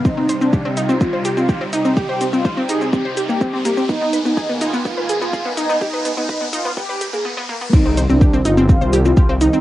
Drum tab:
CC |----------------|----------------|----------------|----------------|
HH |--x---x---x---x-|--x---x---x---x-|--x---x---x---x-|--x---x---x-----|
SH |x-xxx-xxx-xxx-xx|x-xxx-xxx-xxx-xx|x-xxx-xxx-xxx-xx|xxxxxxxxxxxx----|
BD |o---o---o---o---|o---o---o---o---|o---o---o---o---|o---o---o-------|

CC |x---------------|
HH |--x---x---x---x-|
SH |xxxxxxxxxxxxx-xx|
BD |o---o---o---o---|